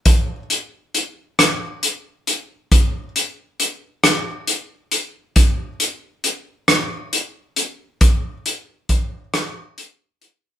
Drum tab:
HH |xxxxxx|xxxxxx|xxxxxx|xxxxxx|
SD |---r--|---r--|---r--|---r--|
BD |o-----|o-----|o-----|o-o---|